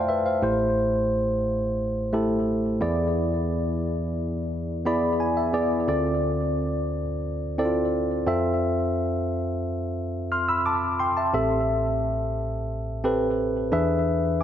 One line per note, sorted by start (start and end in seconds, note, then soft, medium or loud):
0.00 0.26 C5 soft
0.00 0.45 D5 soft
0.00 0.09 E5 soft
0.00 0.26 F5 medium
0.00 0.45 G5 medium
0.00 0.45 A5 medium
0.00 0.45 C6 medium
0.09 0.25 B4 soft
0.09 0.25 E5 medium
0.26 0.42 C5 soft
0.26 0.58 F5 medium
0.42 2.77 A1 medium
0.42 2.77 A2 medium
0.42 1.58 A3 medium
0.42 1.58 E4 medium
0.42 1.58 G4 medium
0.42 1.58 C5 medium
2.13 2.71 A3 medium
2.13 2.71 E4 medium
2.13 2.71 G4 medium
2.13 2.71 A4 medium
2.81 5.50 E2 medium
2.81 5.50 E3 medium
2.81 3.96 B3 medium
2.81 3.96 E4 medium
2.81 3.97 G#4 medium
2.81 3.97 D5 medium
4.86 5.43 B3 medium
4.86 5.44 E4 medium
4.86 5.44 G#4 medium
4.86 5.44 D5 medium
4.86 5.18 B5 medium
5.20 5.36 G#5 medium
5.37 5.53 E5 medium
5.53 5.83 B3 medium
5.53 5.83 E4 medium
5.53 5.83 G#4 medium
5.53 5.83 D5 medium
5.88 8.23 D2 medium
5.88 8.23 D3 medium
5.88 7.03 C4 medium
5.88 7.03 F4 medium
5.88 7.03 A4 medium
5.88 7.04 D5 medium
7.58 8.16 C4 medium
7.58 7.65 E4 medium
7.58 8.16 A4 medium
7.58 8.17 D5 medium
7.65 8.19 F4 medium
8.27 10.96 F2 medium
8.27 9.42 C4 medium
8.27 9.42 F4 medium
8.27 9.42 A4 medium
8.27 9.42 E5 medium
10.32 10.48 C6 soft
10.32 10.48 F6 medium
10.49 10.65 B5 medium
10.49 10.65 E6 medium
10.66 10.98 A5 medium
10.66 10.98 D6 medium
11.00 11.16 G5 medium
11.00 11.16 C6 medium
11.17 11.33 E5 soft
11.17 11.49 A5 medium
11.33 13.68 A1 medium
11.33 13.68 A2 medium
11.33 12.49 C4 medium
11.33 12.49 G4 medium
11.33 12.49 A4 medium
11.33 12.49 E5 medium
13.04 13.62 C4 medium
13.04 13.62 G4 medium
13.04 13.62 A4 medium
13.04 13.62 B4 medium
13.72 14.43 E2 medium
13.72 14.43 E3 medium
13.72 14.43 D4 medium
13.72 14.43 G#4 medium
13.72 14.41 B4 medium
13.72 14.41 E5 medium